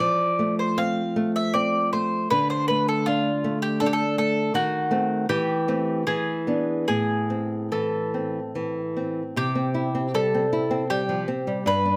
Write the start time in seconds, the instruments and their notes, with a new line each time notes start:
0.00 nylon-string guitar F3, mandolin D5
0.39 nylon-string guitar A3
0.59 mandolin C5
0.77 nylon-string guitar C4, mandolin F5
1.16 nylon-string guitar A3
1.36 mandolin E5
1.54 nylon-string guitar C4, mandolin D5
1.93 nylon-string guitar A3, mandolin C5
2.30 nylon-string guitar D3, mandolin B4
2.50 mandolin C5
2.68 nylon-string guitar A3, mandolin B4
2.88 mandolin A4
3.06 nylon-string guitar D4, mandolin F4
3.44 nylon-string guitar A3
3.62 mandolin G4
3.80 nylon-string guitar D4, mandolin A4
3.86 mandolin G4
3.93 mandolin A4
4.18 nylon-string guitar A3, mandolin A4
4.54 nylon-string guitar D#3, mandolin F#4
4.91 nylon-string guitar A3 C4
5.29 nylon-string guitar E3, mandolin G4
5.68 nylon-string guitar A3 C4
6.07 nylon-string guitar E3, mandolin G#4
6.47 nylon-string guitar B3 D4
6.88 nylon-string guitar A2, mandolin G#4
7.30 nylon-string guitar C4
7.72 nylon-string guitar E3, mandolin A4
8.14 nylon-string guitar C4
8.55 nylon-string guitar E3
8.97 nylon-string guitar C4
9.36 nylon-string guitar C3, mandolin G4
9.55 nylon-string guitar C4
9.74 nylon-string guitar E4
9.95 nylon-string guitar C4
10.14 nylon-string guitar G3, mandolin A4
10.34 nylon-string guitar C4
10.53 nylon-string guitar E4
10.71 nylon-string guitar C4
10.90 nylon-string guitar G3, mandolin G4
11.09 nylon-string guitar F3
11.28 nylon-string guitar C4
11.47 nylon-string guitar G3
11.66 nylon-string guitar G2, mandolin B4
11.86 nylon-string guitar D4